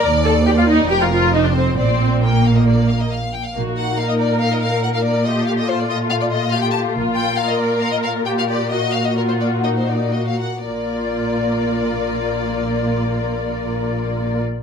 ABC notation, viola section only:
X:1
M:4/4
L:1/16
Q:1/4=135
K:Bb
V:1 name="Viola section"
z2 A2 G F E2 G F F2 E D C2 | C4 B,8 z4 | _G4 B12 | G4 F8 G4 |
F4 B8 G4 | _G4 F4 E4 G2 z2 | [B,F]16- | [B,F]16 |]